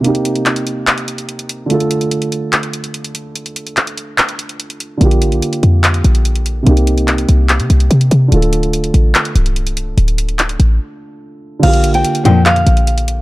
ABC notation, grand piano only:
X:1
M:4/4
L:1/8
Q:1/4=145
K:Dphr
V:1 name="Grand piano"
[C,B,EG]8 | [D,A,FA]8- | [D,A,FA]8 | [D,B,FG]8 |
[C,B,EG]8 | [D,A,FA]8- | [D,A,FA]8 | [D,B,FG]8 |]